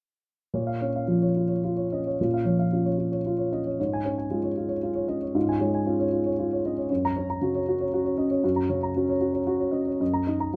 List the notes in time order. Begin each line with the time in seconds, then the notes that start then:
0.54 A#2 C#5
0.67 F5
0.81 C#4 C#5
0.96 F5
1.07 F3 F4
1.22 C#5
1.37 F4
1.49 C#5
1.64 F4
1.77 C#5
1.92 C#4 D#5
2.07 C#5
2.21 A#2 F4
2.34 F5
2.45 F3 C#5
2.59 F5
2.72 C#4 F4
2.86 C#5
2.98 F4
3.12 C#5
3.26 F4
3.38 C#5
3.52 C#4 D#5
3.67 C#5
3.79 G#2 C#5
3.93 G#5
4.05 C#4 C#5
4.18 G#5
4.31 G#3 F4
4.44 C#5
4.57 F4
4.69 C#5
4.83 F4
4.95 C#5
5.08 C#4 D#5
5.22 C#5
5.35 G#2 F4
5.49 G#5
5.60 G#3 C#5
5.75 G#5
5.86 C#4 F4
6.00 C#5
6.12 F4
6.26 C#5
6.39 F4
6.53 C#5
6.65 C#4 D#5
6.78 C#5
6.90 F#2 C#5
7.05 A#5
7.16 C#4 C#5
7.30 A#5
7.41 C#3 F#4
7.55 C#5
7.68 F#4
7.81 C#5
7.94 F#4
8.05 C#5
8.18 C#4 D#5
8.31 C#5
8.44 F#2 F#4
8.56 A#5
8.69 C#3 C#5
8.83 A#5
8.96 C#4 F#4
9.09 C#5
9.21 F#4
9.34 C#5
9.47 F#4
9.60 C#5
9.71 C#4 D#5
9.87 C#5
10.00 F#2 D#5
10.13 A#5
10.27 D#4 D#5
10.40 A#5